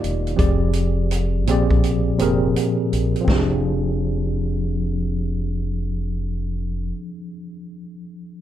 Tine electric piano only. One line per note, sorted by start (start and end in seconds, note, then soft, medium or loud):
0.00 0.40 D#3 medium
0.00 0.41 A#3 medium
0.00 0.40 D#4 medium
0.00 0.40 F4 medium
0.00 0.37 G4 medium
0.00 0.39 D5 medium
0.36 1.41 F3 medium
0.36 1.41 C4 medium
0.36 1.42 G4 medium
0.36 1.42 G#4 medium
0.36 1.43 D5 medium
1.47 2.09 A#2 medium
1.47 2.09 F3 medium
1.47 2.09 C4 medium
1.47 2.10 G4 medium
1.47 2.10 G#4 medium
1.47 2.11 D5 medium
2.18 2.96 A#2 medium
2.18 2.97 F3 medium
2.18 2.97 C4 medium
2.18 2.97 G4 medium
2.18 2.98 G#4 medium
2.18 2.98 A#4 loud
3.21 6.83 F3 medium
3.21 6.87 C4 medium
3.28 6.90 D4 medium
3.28 6.94 G4 medium
3.36 6.98 G#4 medium